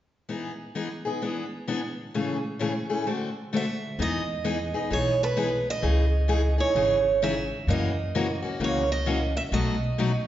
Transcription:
0.29 0.51 E3 soft
0.29 0.51 B3 medium
0.29 0.51 D#4 medium
0.29 0.51 G#4 medium
0.75 0.87 E3 medium
0.75 0.87 B3 medium
0.75 0.87 D#4 medium
0.75 0.87 G#4 medium
1.05 1.21 B3 soft
1.05 1.22 D#4 soft
1.05 1.21 G#4 soft
1.22 1.43 E3 medium
1.22 1.44 B3 medium
1.22 1.44 D4 medium
1.22 1.44 G#4 medium
1.68 1.79 E3 medium
1.68 1.80 B3 medium
1.68 1.80 D4 medium
1.68 1.80 G#4 medium
2.14 2.36 A2 medium
2.14 2.36 C#3 medium
2.14 2.36 E3 medium
2.14 2.36 A3 medium
2.14 2.36 C#4 medium
2.14 2.36 G#4 medium
2.59 2.71 A2 medium
2.59 2.72 C#3 medium
2.59 2.72 E3 medium
2.59 2.72 A3 medium
2.59 2.72 C#4 medium
2.59 2.72 G#4 medium
2.90 3.06 E3 soft
2.90 3.06 A3 soft
2.90 3.06 C#4 soft
2.90 3.06 G#4 medium
3.06 3.28 D3 medium
3.06 3.28 A3 medium
3.06 3.28 C4 medium
3.06 3.29 F#4 medium
3.06 3.29 A4 medium
3.53 3.64 D3 medium
3.53 3.64 A3 medium
3.53 3.65 C4 medium
3.53 3.65 F#4 medium
3.53 3.65 A4 medium
3.53 3.98 E5 medium
3.99 4.73 E2 medium
3.99 4.21 E3 medium
3.99 4.21 B3 medium
3.99 4.21 D#4 medium
3.99 4.21 G#4 medium
3.99 4.89 D#5 loud
4.44 4.56 E3 medium
4.44 4.56 B3 medium
4.44 4.57 D#4 medium
4.44 4.57 G#4 medium
4.74 4.90 B3 soft
4.74 4.90 D#4 soft
4.74 4.90 G#4 medium
4.90 5.65 B1 medium
4.90 5.13 E3 medium
4.90 5.13 B3 medium
4.90 5.13 D#4 medium
4.90 5.13 G#4 medium
4.90 5.23 C#5 medium
5.23 5.25 A4 medium
5.23 5.70 B4 medium
5.37 5.49 E3 medium
5.37 5.49 B3 medium
5.37 5.49 D#4 medium
5.37 5.49 G#4 medium
5.70 6.56 D#5 medium
5.82 6.57 C#2 medium
5.82 6.04 C#3 medium
5.82 6.05 E3 medium
5.82 6.05 D#4 medium
5.82 6.05 G#4 medium
6.28 6.40 C#3 medium
6.28 6.41 E3 medium
6.28 6.41 D#4 medium
6.28 6.41 G#4 medium
6.58 6.74 E3 soft
6.58 6.75 D#4 soft
6.58 6.75 G#4 medium
6.58 7.23 C#5 medium
6.75 7.49 G#1 medium
6.75 6.97 C#3 medium
6.75 6.97 E3 medium
6.75 6.98 D#4 medium
6.75 6.98 G#4 medium
7.22 7.33 C#3 medium
7.22 7.34 E3 medium
7.22 7.34 D#4 medium
7.22 7.34 G#4 medium
7.22 7.66 E5 medium
7.67 8.41 F#2 medium
7.67 7.90 C#3 medium
7.67 7.90 E3 medium
7.67 7.90 A#3 medium
7.67 7.90 C#4 medium
7.67 7.90 F#4 medium
7.67 8.41 D#5 medium
8.15 8.26 C#3 medium
8.15 8.26 E3 medium
8.15 8.26 A#3 medium
8.15 8.26 C#4 medium
8.15 8.26 F#4 medium
8.42 8.59 A#3 soft
8.42 8.60 C#4 soft
8.42 8.59 F#4 medium
8.60 9.34 C#2 medium
8.60 8.82 C#3 medium
8.60 8.82 E3 medium
8.60 8.82 A#3 medium
8.60 8.82 C#4 medium
8.60 8.82 F#4 medium
8.64 8.91 C#5 medium
8.92 9.36 D#5 medium
9.06 9.18 C#3 medium
9.06 9.18 E3 medium
9.06 9.18 A#3 medium
9.06 9.18 C#4 medium
9.06 9.18 F#4 medium
9.37 9.42 E5 medium
9.52 10.26 B1 medium
9.52 9.74 B2 medium
9.52 9.74 F#3 medium
9.52 9.74 A3 medium
9.52 9.74 D#4 medium
9.52 9.74 F#4 medium
9.52 10.25 D#5 medium
9.98 10.10 B2 medium
9.98 10.10 F#3 medium
9.98 10.10 A3 medium
9.98 10.11 D#4 medium
9.98 10.11 F#4 medium

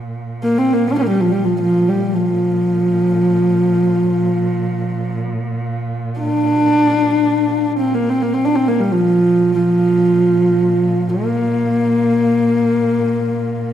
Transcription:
0.00 0.81 A#2 medium
0.43 0.60 A#3 medium
0.58 0.75 C4 medium
0.73 0.89 A#3 medium
0.82 7.74 A#2 medium
0.87 0.98 D4 medium
0.98 1.08 A#3 medium
1.09 1.22 G3 medium
1.20 1.33 F3 medium
1.31 1.46 G3 medium
1.44 1.60 F3 medium
1.61 1.90 F3 medium
1.89 2.15 G3 medium
2.14 5.19 F3 medium
6.19 7.73 D4 medium
7.75 13.73 A#2 medium
7.75 7.96 C4 medium
7.94 8.11 A#3 medium
8.10 8.24 C4 medium
8.22 8.35 A#3 medium
8.34 8.46 C4 medium
8.44 8.57 D4 medium
8.56 8.69 C4 medium
8.68 8.82 A#3 medium
8.80 8.94 G3 medium
8.92 9.54 F3 medium
9.55 11.11 F3 medium
11.09 13.73 A#3 medium

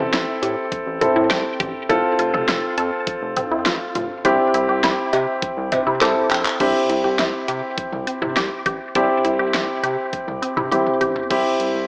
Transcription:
0.00 0.12 A1 loud
0.00 0.98 C4 medium
0.00 0.98 E4 medium
0.00 0.11 G4 medium
0.00 0.98 A4 medium
0.13 0.26 A1 loud
0.13 0.39 E4 medium
0.13 snare loud
0.13 closed hi-hat medium
0.42 0.56 A2 loud
0.42 0.69 G4 medium
0.42 closed hi-hat medium
0.72 kick loud
0.72 closed hi-hat medium
0.87 1.00 A1 loud
1.01 1.88 C4 medium
1.01 1.14 C4 medium
1.01 1.89 E4 medium
1.01 1.88 A4 medium
1.01 closed hi-hat medium
1.01 mid tom medium
1.16 1.29 A2 loud
1.16 1.29 E4 medium
1.30 1.44 C2 loud
1.30 1.57 G4 medium
1.30 snare loud
1.30 closed hi-hat medium
1.60 1.73 A1 loud
1.60 1.86 G4 medium
1.60 kick loud
1.60 closed hi-hat medium
1.60 mid tom loud
1.89 2.03 F1 loud
1.89 4.21 C4 medium
1.89 2.16 E4 loud
1.89 4.21 F4 medium
1.89 4.21 A4 medium
1.89 kick loud
1.89 closed hi-hat medium
2.19 2.32 F1 loud
2.19 2.32 F4 medium
2.19 closed hi-hat medium
2.33 2.47 F1 loud
2.33 2.47 A4 medium
2.33 mid tom loud
2.48 2.62 F1 loud
2.48 2.75 F4 medium
2.48 snare loud
2.48 closed hi-hat medium
2.78 2.91 F2 loud
2.78 3.04 A4 medium
2.78 closed hi-hat medium
3.07 kick loud
3.07 closed hi-hat medium
3.22 3.35 F1 loud
3.37 3.50 C4 medium
3.37 closed hi-hat medium
3.37 mid tom medium
3.51 3.64 F2 medium
3.51 3.64 E4 medium
3.66 3.79 A1 loud
3.66 3.92 F4 medium
3.66 snare loud
3.66 closed hi-hat medium
3.95 4.09 F1 loud
3.95 4.22 F4 medium
3.95 closed hi-hat medium
3.95 mid tom medium
4.25 4.38 C2 loud
4.25 5.98 C4 medium
4.25 4.51 D4 loud
4.25 5.98 E4 medium
4.25 5.98 G4 medium
4.25 kick loud
4.25 closed hi-hat medium
4.54 4.68 C2 loud
4.54 4.67 E4 medium
4.54 closed hi-hat medium
4.69 4.82 C2 loud
4.69 4.82 G4 medium
4.84 4.97 C2 loud
4.84 5.10 E4 medium
4.84 snare loud
4.84 closed hi-hat medium
5.13 5.26 C3 loud
5.13 5.39 G4 medium
5.13 closed hi-hat medium
5.13 cowbell medium
5.42 kick loud
5.42 closed hi-hat medium
5.57 5.71 C2 loud
5.72 5.85 C4 medium
5.72 closed hi-hat medium
5.72 mid tom medium
5.72 cowbell medium
5.87 6.00 C3 loud
5.87 6.00 E4 medium
6.01 6.15 C2 medium
6.01 6.59 C4 medium
6.01 6.59 E4 medium
6.01 6.28 G4 medium
6.01 6.60 A4 medium
6.01 clap medium
6.01 closed hi-hat medium
6.31 6.44 A#1 loud
6.31 6.57 G4 medium
6.31 clap loud
6.31 closed hi-hat medium
6.46 clap medium
6.60 6.73 C2 loud
6.60 8.91 C4 medium
6.60 6.86 D4 medium
6.60 8.92 E4 medium
6.60 8.91 G4 medium
6.60 kick loud
6.60 closed hi-hat medium
6.60 crash medium
6.89 7.03 C2 loud
6.89 7.03 E4 medium
6.89 closed hi-hat medium
7.04 7.18 C2 loud
7.04 7.17 G4 medium
7.19 7.32 C2 medium
7.19 7.45 E4 medium
7.19 snare loud
7.19 closed hi-hat medium
7.48 7.62 C3 loud
7.48 7.75 G4 medium
7.48 closed hi-hat medium
7.78 kick loud
7.78 closed hi-hat medium
7.93 8.06 C2 loud
7.93 mid tom medium
8.07 8.20 C4 medium
8.07 closed hi-hat medium
8.22 8.35 C3 medium
8.22 8.35 E4 medium
8.22 mid tom loud
8.36 8.50 C2 loud
8.36 8.63 G4 medium
8.36 snare loud
8.36 closed hi-hat medium
8.66 8.79 A1 medium
8.66 8.92 G4 medium
8.66 kick loud
8.66 closed hi-hat medium
8.95 9.09 C2 loud
8.95 10.68 C4 medium
8.95 9.22 D4 loud
8.95 10.68 E4 medium
8.95 10.68 G4 medium
8.95 kick loud
8.95 closed hi-hat medium
9.24 9.38 C2 loud
9.24 9.38 E4 medium
9.24 closed hi-hat medium
9.39 9.53 C2 loud
9.39 9.53 G4 medium
9.54 9.67 C2 loud
9.54 9.81 E4 medium
9.54 snare loud
9.54 closed hi-hat medium
9.83 9.97 C3 loud
9.83 10.10 G4 medium
9.83 closed hi-hat medium
10.13 kick medium
10.13 closed hi-hat medium
10.27 10.41 C2 medium
10.27 mid tom medium
10.42 10.55 C4 medium
10.42 closed hi-hat medium
10.57 10.70 C3 medium
10.57 10.70 E4 medium
10.57 mid tom loud
10.72 10.85 C2 medium
10.72 11.29 C4 medium
10.72 11.29 E4 medium
10.72 10.98 G4 medium
10.72 11.29 G4 medium
10.72 closed hi-hat medium
10.72 high tom medium
10.87 mid tom medium
11.01 11.14 A1 medium
11.01 11.27 G4 medium
11.01 closed hi-hat medium
11.01 mid tom medium
11.16 floor tom medium
11.30 11.44 C2 loud
11.30 11.87 C4 medium
11.30 11.87 E4 medium
11.30 11.87 G4 medium
11.30 kick loud
11.30 closed hi-hat medium
11.30 crash medium
11.60 11.73 C2 loud
11.60 closed hi-hat medium
11.74 11.87 C2 loud

